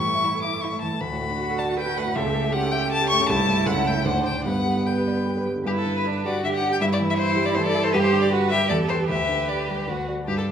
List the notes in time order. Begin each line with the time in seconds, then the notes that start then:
Already playing: A2 E3 E4 C#6
0.05 A3
0.15 E4
0.25 A3 E4
0.35 A4
0.43 E5 D6
0.54 A4
0.61 E4 C#6
0.72 A3
0.81 E3 A5
0.92 A3
1.01 D2 F#4 B5
1.11 A2
1.21 A3
1.30 D4
1.39 F#4
1.50 A4
1.59 D5 A5
1.69 F#5
1.77 A4 B4 G5
1.86 F#4
1.97 A3 F#5
2.06 A2
2.15 C#2 G4 A4 E5
2.25 C#3
2.34 A3
2.44 E4
2.53 C#4 G4 F#5
2.63 A4
2.72 E5 G5
2.82 G5
2.92 A4 A5
3.01 G4
3.10 A3 C#6
3.20 C#3
3.29 C2 E4 A5
3.39 G2
3.48 A3
3.58 E4
3.66 C#2 A4 F#5
3.77 C#3
3.86 A3 G5
3.95 E4
4.05 D2 D4 C5 F#5
4.14 A2
4.25 A3 G5
4.35 D4
4.45 G2 B3 B4 F#5
4.55 D3
4.65 G3
4.76 D4
4.86 B4 G5
4.98 G4
5.07 D5
5.17 B5
5.27 G4
5.36 B4
5.45 G3
5.56 D3
5.65 G2 E4 G4 B4
5.79 A4
5.85 D3
5.97 B4
6.05 D4
6.24 G3 F#4 D5
6.43 D3 G4 E5
6.47 G4
6.55 F#5
6.61 D4
6.73 G5
6.81 G2 E4 E5
6.93 D5
7.00 E3
7.10 E5
7.17 E4 C5
7.37 G3
7.46 D5
7.55 E3 A4 C5
7.66 D5
7.75 E4
7.84 C5
7.93 G2 G4 B4
8.03 C5
8.13 D3
8.22 D5
8.32 F#4 G4 B4
8.50 G3 G4 E5
8.69 E2 G4 A4 D5
8.89 G4 B4 C5
9.08 D2 G4 B4 E5
9.29 D3
9.49 G4 D5
9.68 G3
9.88 D2 F#4
10.07 F#4 D5
10.28 G2 D4 G4
10.38 A4
10.46 D3